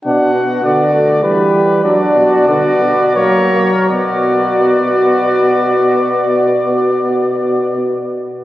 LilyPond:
<<
  \new Staff \with { instrumentName = "Trumpet" } { \time 3/4 \key b \minor \tempo 4 = 79 fis''4 d''4 b'4 | d''4 d''4 cis''4 | d''2.~ | d''2. | }
  \new Staff \with { instrumentName = "Flugelhorn" } { \time 3/4 \key b \minor fis'2 g'4 | fis'2 ais'4 | fis'2.~ | fis'2. | }
  \new Staff \with { instrumentName = "Trombone" } { \time 3/4 \key b \minor d'8 b8 b8 a8 g4 | d'4 b4 ais8 ais8 | b2.~ | b2. | }
  \new Staff \with { instrumentName = "Bass trombone" } { \clef bass \time 3/4 \key b \minor b,4 d4 e4 | fis8 b,8 d8 b,8 fis4 | b,2.~ | b,2. | }
>>